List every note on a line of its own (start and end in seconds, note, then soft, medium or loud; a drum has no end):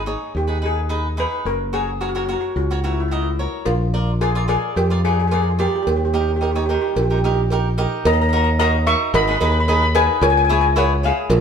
0.00 0.15 G#1 medium
0.00 0.38 G#4 medium
0.06 0.32 D#4 medium
0.06 0.32 G#4 soft
0.06 0.32 C#5 medium
0.35 1.25 D#2 medium
0.35 0.65 G4 medium
0.47 0.57 D#4 medium
0.47 0.57 G#4 soft
0.47 0.57 B4 medium
0.62 0.79 D#4 soft
0.62 0.79 G#4 soft
0.62 1.21 G#4 medium
0.62 0.79 B4 medium
0.89 1.07 D#4 medium
0.89 1.07 G#4 soft
0.89 1.07 B4 medium
1.17 1.46 D#4 medium
1.17 1.46 G#4 medium
1.17 1.46 B4 medium
1.17 1.48 B4 medium
1.45 2.35 F#1 medium
1.45 1.72 A#4 medium
1.73 1.90 F#4 medium
1.73 2.02 G#4 medium
1.73 1.90 A#4 soft
1.73 1.90 C#5 medium
2.01 2.09 F#4 medium
2.01 2.08 F#4 medium
2.01 2.09 A#4 soft
2.01 2.10 C#5 medium
2.09 2.15 F#4 medium
2.15 2.23 F#4 medium
2.15 2.24 F#4 medium
2.15 2.24 A#4 medium
2.15 2.23 C#5 medium
2.25 2.32 F#4 soft
2.25 2.54 F#4 medium
2.25 2.54 A#4 medium
2.30 2.40 F#4 medium
2.30 2.54 C#5 medium
2.41 2.48 F#4 medium
2.56 3.46 C#2 medium
2.56 2.85 F#4 medium
2.71 2.79 F#4 medium
2.71 2.79 A#4 soft
2.71 2.79 C#5 medium
2.84 2.91 E4 medium
2.84 3.00 F#4 medium
2.84 3.01 A#4 medium
2.84 3.01 C#5 medium
2.93 2.99 E4 soft
3.00 3.07 E4 medium
3.08 3.13 E4 soft
3.08 3.28 F#4 medium
3.12 3.21 E4 medium
3.12 3.28 A#4 medium
3.12 3.29 D#5 medium
3.22 3.29 E4 soft
3.39 3.67 F#4 medium
3.39 3.67 A#4 soft
3.39 3.67 C#5 medium
3.65 4.56 A#1 medium
3.65 4.23 F4 medium
3.65 cowbell medium
3.94 4.11 F4 medium
3.94 4.11 A#4 medium
3.94 4.11 D5 medium
4.21 4.30 F4 medium
4.21 4.34 G#4 medium
4.21 4.30 A#4 medium
4.21 4.30 D5 medium
4.21 cowbell medium
4.35 4.44 F4 medium
4.35 4.44 A#4 medium
4.35 4.44 D5 medium
4.48 4.73 F4 medium
4.48 4.75 G#4 medium
4.48 4.74 A#4 medium
4.48 4.74 D5 medium
4.48 cowbell medium
4.76 5.66 F2 medium
4.76 4.89 G4 medium
4.76 cowbell medium
4.90 4.99 F4 medium
4.90 4.99 A#4 soft
4.90 4.99 D5 medium
5.05 5.21 F4 medium
5.05 5.12 G#4 medium
5.05 5.21 A#4 medium
5.05 5.21 D5 medium
5.13 5.18 G#4 medium
5.20 5.26 G#4 medium
5.27 5.48 F4 medium
5.27 5.33 G#4 medium
5.32 5.41 G#4 medium
5.32 5.48 A#4 medium
5.32 5.48 D5 medium
5.32 cowbell medium
5.42 5.49 G#4 medium
5.59 5.86 F4 medium
5.59 5.66 G4 medium
5.59 5.86 A#4 medium
5.59 5.87 D5 medium
5.59 cowbell medium
5.67 5.74 G4 medium
5.75 5.81 G4 medium
5.83 5.88 G4 medium
5.87 6.76 D#2 medium
5.87 5.95 G4 medium
5.87 cowbell medium
5.96 6.04 G4 medium
6.05 6.12 G4 medium
6.13 6.30 D#4 medium
6.13 6.19 G4 soft
6.13 6.31 G4 medium
6.13 6.31 A#4 medium
6.21 6.27 G4 soft
6.28 6.35 G4 soft
6.36 6.42 G4 medium
6.41 6.50 D#4 medium
6.41 6.50 G4 medium
6.41 6.50 G4 soft
6.41 6.50 A#4 medium
6.41 cowbell medium
6.51 6.56 G4 medium
6.55 6.63 D#4 medium
6.55 6.64 G4 soft
6.55 6.64 C#5 medium
6.66 6.72 G4 medium
6.66 6.94 G4 medium
6.66 cowbell medium
6.70 6.94 D#4 medium
6.70 6.94 A#4 medium
6.74 6.80 G4 medium
6.81 6.87 G4 medium
6.88 6.94 G4 soft
6.95 7.85 A#1 medium
6.95 7.01 G4 medium
6.95 cowbell medium
7.02 7.09 G4 soft
7.10 7.18 D#4 soft
7.10 7.18 G4 medium
7.10 7.16 G4 medium
7.10 7.18 A#4 medium
7.18 7.24 G4 medium
7.24 7.40 D#4 medium
7.24 7.40 G4 medium
7.24 7.32 G4 medium
7.24 7.41 A#4 medium
7.34 7.40 G4 medium
7.50 7.67 D#4 medium
7.50 7.68 G4 medium
7.50 7.68 A#4 medium
7.50 cowbell medium
7.78 8.05 D#4 medium
7.78 8.05 G4 medium
7.78 8.05 A#4 medium
7.78 cowbell medium
8.05 8.94 D#2 loud
8.05 8.13 D#5 medium
8.05 8.12 A#5 medium
8.05 cowbell loud
8.13 8.20 A#5 medium
8.22 8.28 A#5 medium
8.29 8.49 A#4 medium
8.29 8.35 A#5 medium
8.33 8.49 D#4 medium
8.33 8.49 F#4 medium
8.33 8.43 A#5 medium
8.44 8.51 A#5 medium
8.59 8.76 D#4 medium
8.59 8.76 F#4 medium
8.59 8.76 A#4 medium
8.59 8.85 D#5 medium
8.59 8.88 A#5 loud
8.59 cowbell medium
8.87 9.11 D#4 medium
8.87 9.11 F#4 medium
8.87 9.11 A#4 medium
8.87 9.12 E5 medium
8.87 9.15 C#6 loud
9.14 9.36 G#1 loud
9.14 9.22 D#5 medium
9.14 9.22 B5 loud
9.14 cowbell loud
9.23 9.29 B5 medium
9.28 9.36 D#4 medium
9.28 9.36 G#4 medium
9.28 9.36 B4 medium
9.28 9.36 B5 medium
9.37 10.07 D#2 loud
9.37 9.58 D#4 medium
9.37 9.44 B5 medium
9.37 cowbell medium
9.42 9.58 G#4 medium
9.42 9.58 B4 medium
9.42 9.51 B5 medium
9.52 9.59 B5 medium
9.60 9.67 B5 medium
9.68 9.85 D#4 medium
9.68 9.85 G#4 medium
9.68 9.85 B4 medium
9.68 9.74 B5 medium
9.68 cowbell medium
9.75 9.81 B5 medium
9.82 9.89 B5 medium
9.95 10.22 D#4 medium
9.95 10.22 G#4 medium
9.95 10.22 B4 medium
9.95 10.21 B4 medium
9.95 10.21 G#5 loud
9.95 cowbell medium
10.21 11.10 C#2 loud
10.21 10.30 C#5 medium
10.21 10.29 G#5 medium
10.21 cowbell loud
10.30 10.36 G#5 medium
10.37 10.43 G#5 medium
10.45 10.52 G#5 medium
10.49 10.66 E4 medium
10.49 10.66 G#4 medium
10.49 10.66 C#5 medium
10.49 10.60 G#5 medium
10.61 10.67 G#5 medium
10.76 10.93 E4 medium
10.76 10.93 G#4 medium
10.76 10.93 C#5 medium
10.76 11.03 C#5 medium
10.76 11.05 F#5 medium
10.76 cowbell medium
11.03 11.28 E4 medium
11.03 11.28 G#4 medium
11.03 11.41 G#4 medium
11.03 11.28 C#5 medium
11.03 11.41 F5 medium
11.30 11.41 A#1 loud
11.30 cowbell loud